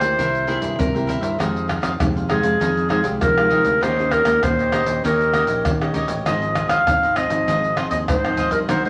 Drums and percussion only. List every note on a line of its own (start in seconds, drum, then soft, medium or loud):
0.01 pandeiro medium
0.01 shaker medium
0.19 pandeiro medium
0.19 shaker medium
0.19 surdo medium
0.35 pandeiro soft
0.35 shaker soft
0.48 pandeiro medium
0.62 pandeiro medium
0.62 shaker medium
0.62 surdo soft
0.79 pandeiro medium
0.79 shaker medium
0.79 surdo medium
0.96 pandeiro soft
0.96 shaker soft
1.09 pandeiro medium
1.09 shaker medium
1.23 pandeiro medium
1.23 shaker medium
1.23 surdo soft
1.40 pandeiro medium
1.40 tamborim medium
1.40 shaker medium
1.40 surdo medium
1.56 pandeiro soft
1.56 shaker soft
1.69 pandeiro medium
1.69 tamborim medium
1.69 surdo soft
1.83 pandeiro medium
1.83 tamborim medium
1.83 shaker medium
1.83 surdo soft
2.00 pandeiro medium
2.00 tamborim medium
2.00 shaker medium
2.00 surdo loud
2.17 pandeiro soft
2.17 shaker soft
2.30 pandeiro medium
2.30 tamborim medium
2.43 pandeiro medium
2.43 shaker medium
2.61 pandeiro medium
2.61 shaker medium
2.61 surdo medium
2.77 pandeiro soft
2.77 shaker soft
2.90 pandeiro medium
2.90 tamborim medium
3.04 pandeiro medium
3.04 shaker medium
3.04 surdo soft
3.21 pandeiro medium
3.21 tamborim medium
3.21 shaker medium
3.21 surdo medium
3.38 pandeiro soft
3.38 tamborim medium
3.38 shaker soft
3.50 pandeiro medium
3.50 surdo soft
3.65 pandeiro medium
3.65 shaker medium
3.65 surdo soft
3.83 pandeiro medium
3.83 tamborim medium
3.83 shaker medium
3.83 surdo medium
3.99 pandeiro soft
3.99 shaker soft
4.11 pandeiro medium
4.11 tamborim medium
4.11 shaker medium
4.11 surdo soft
4.25 pandeiro medium
4.25 tamborim medium
4.25 shaker medium
4.25 surdo soft
4.43 pandeiro medium
4.43 tamborim medium
4.43 shaker medium
4.43 surdo loud
4.59 pandeiro soft
4.59 shaker soft
4.72 pandeiro medium
4.72 tamborim medium
4.72 shaker medium
4.86 pandeiro medium
4.86 shaker medium
5.05 pandeiro medium
5.05 shaker medium
5.05 surdo medium
5.21 pandeiro soft
5.21 shaker soft
5.34 pandeiro medium
5.34 tamborim medium
5.34 shaker medium
5.47 pandeiro medium
5.47 shaker medium
5.47 surdo soft
5.65 pandeiro medium
5.65 tamborim medium
5.65 shaker medium
5.65 surdo loud
5.81 pandeiro soft
5.81 tamborim medium
5.81 shaker soft
5.94 pandeiro medium
5.94 shaker medium
5.94 surdo soft
6.08 pandeiro medium
6.08 shaker medium
6.08 surdo soft
6.26 pandeiro medium
6.26 tamborim medium
6.26 shaker medium
6.26 surdo medium
6.42 pandeiro soft
6.42 shaker soft
6.55 pandeiro medium
6.55 tamborim medium
6.55 shaker medium
6.55 surdo soft
6.69 pandeiro medium
6.69 tamborim medium
6.69 shaker medium
6.69 surdo soft
6.87 pandeiro medium
6.87 tamborim medium
6.87 shaker medium
6.87 surdo loud
7.03 pandeiro soft
7.03 shaker soft
7.16 pandeiro medium
7.16 tamborim medium
7.16 shaker medium
7.30 pandeiro medium
7.30 shaker medium
7.48 pandeiro medium
7.48 shaker medium
7.48 surdo medium
7.64 pandeiro soft
7.64 shaker soft
7.77 pandeiro medium
7.77 tamborim medium
7.91 pandeiro medium
7.91 shaker medium
7.91 surdo soft
8.08 pandeiro medium
8.08 tamborim medium
8.08 shaker medium
8.08 surdo loud
8.25 pandeiro soft
8.25 tamborim medium
8.25 shaker soft
8.37 pandeiro medium
8.37 shaker medium
8.37 surdo soft
8.51 pandeiro medium
8.51 shaker medium
8.51 surdo soft
8.69 pandeiro medium
8.69 tamborim medium
8.69 shaker medium
8.69 surdo medium
8.85 pandeiro soft
8.85 shaker soft